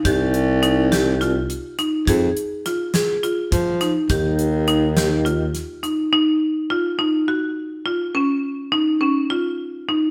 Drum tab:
HH |xxxxxxx|xxxxxxx|xxxxxxx|-------|
SD |---oo--|--oo--o|---o-o-|-------|
BD |o------|o----o-|o------|-------|

HH |-------|
SD |-------|
BD |-------|